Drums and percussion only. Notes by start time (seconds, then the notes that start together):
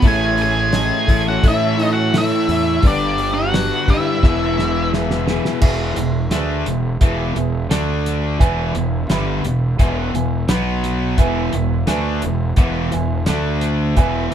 0.02 kick, open hi-hat
0.38 open hi-hat
0.73 snare, open hi-hat
1.08 kick, open hi-hat
1.43 kick, open hi-hat
1.79 open hi-hat
2.14 snare, open hi-hat
2.49 open hi-hat
2.83 kick, open hi-hat
3.18 open hi-hat
3.54 snare, open hi-hat
3.88 kick, open hi-hat
4.23 kick, snare
4.59 snare
4.94 snare
5.11 snare
5.28 snare
5.45 snare
5.62 kick, crash
5.96 closed hi-hat
6.31 snare, closed hi-hat
6.66 closed hi-hat
7.01 kick, closed hi-hat
7.36 closed hi-hat
7.71 snare, closed hi-hat
8.06 snare, closed hi-hat
8.40 kick, closed hi-hat
8.75 closed hi-hat
9.10 snare, closed hi-hat
9.44 closed hi-hat
9.79 kick, closed hi-hat
10.15 closed hi-hat
10.48 snare, closed hi-hat
10.84 snare, closed hi-hat
11.18 kick, closed hi-hat
11.53 closed hi-hat
11.87 snare, closed hi-hat
12.22 closed hi-hat
12.56 kick, closed hi-hat
12.92 closed hi-hat
13.26 snare, closed hi-hat
13.61 snare, closed hi-hat
13.97 kick, closed hi-hat